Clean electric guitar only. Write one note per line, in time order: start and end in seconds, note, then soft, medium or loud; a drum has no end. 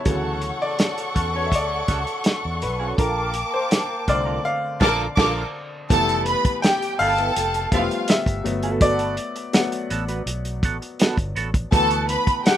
0.05 0.39 C#4 medium
0.05 0.40 F#4 medium
0.05 0.40 A4 medium
0.60 muted clean electric guitar stroke soft
0.79 muted clean electric guitar stroke soft
0.97 muted clean electric guitar stroke soft
1.15 1.28 C#4 medium
1.15 1.29 F#4 medium
1.15 1.29 A4 medium
1.33 1.47 C#4 medium
1.33 1.47 F#4 soft
1.33 1.46 B4 medium
1.52 muted clean electric guitar stroke soft
1.88 2.01 C#4 medium
1.88 2.02 F#4 medium
1.88 2.02 A4 medium
2.06 muted clean electric guitar stroke soft
2.25 muted clean electric guitar stroke soft
2.44 muted clean electric guitar stroke soft
2.79 2.97 C#4 medium
2.79 2.98 F#4 medium
2.79 2.98 A4 medium
2.98 3.32 D4 medium
2.98 3.32 F4 medium
2.98 3.33 A4 medium
3.52 muted clean electric guitar stroke soft
3.71 muted clean electric guitar stroke soft
3.89 muted clean electric guitar stroke soft
4.08 4.21 D4 medium
4.08 4.21 F4 medium
4.08 4.21 A4 medium
4.25 4.39 D4 soft
4.25 4.39 F4 medium
4.25 4.39 A#4 medium
4.80 5.05 D4 medium
4.80 5.06 F4 medium
4.80 5.06 A4 medium
5.17 5.42 D4 loud
5.17 5.43 F4 loud
5.17 5.43 A4 medium
5.90 6.24 B3 medium
5.90 6.24 E4 medium
5.90 6.25 A4 medium
6.46 muted clean electric guitar stroke soft
6.63 muted clean electric guitar stroke soft
6.82 muted clean electric guitar stroke medium
7.00 7.13 B3 medium
7.00 7.13 E4 medium
7.00 7.13 A4 medium
7.18 7.32 B3 medium
7.18 7.31 E4 medium
7.18 7.31 B4 medium
7.37 muted clean electric guitar stroke soft
7.72 7.85 B3 medium
7.72 7.86 E4 medium
7.72 7.86 A4 medium
7.91 muted clean electric guitar stroke soft
8.28 muted clean electric guitar stroke soft
8.63 8.80 B3 medium
8.63 8.81 F#4 medium
8.63 8.82 A4 medium
8.82 9.15 B3 medium
8.82 9.16 F#4 medium
8.82 9.16 A4 medium
9.36 muted clean electric guitar stroke soft
9.54 muted clean electric guitar stroke soft
9.72 muted clean electric guitar stroke medium
9.90 10.03 B3 medium
9.90 10.03 F#4 medium
9.90 10.04 A4 medium
10.08 10.22 B3 medium
10.08 10.22 F#4 medium
10.08 10.21 B4 medium
10.28 muted clean electric guitar stroke soft
10.64 10.76 B3 medium
10.64 10.76 F#4 medium
10.64 10.77 A4 medium
10.82 muted clean electric guitar stroke medium
11.00 11.16 B3 medium
11.00 11.17 F#4 medium
11.00 11.17 A4 medium
11.36 11.48 B3 medium
11.36 11.49 F#4 medium
11.36 11.49 A4 medium
11.55 muted clean electric guitar stroke medium
11.72 12.06 B3 medium
11.72 12.06 F#4 medium
11.72 12.07 A4 medium
12.27 muted clean electric guitar stroke soft
12.45 muted clean electric guitar stroke soft